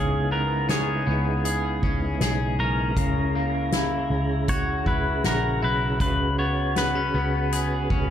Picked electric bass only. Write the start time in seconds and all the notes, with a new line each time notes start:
Already playing: C#2
1.07 C#2
1.83 C#2
2.21 B1
2.59 B1
2.96 C#2
4.10 C#2
4.86 C#2
5.25 A#1
5.63 B1
6.00 C#2
7.14 C#2
7.91 C#2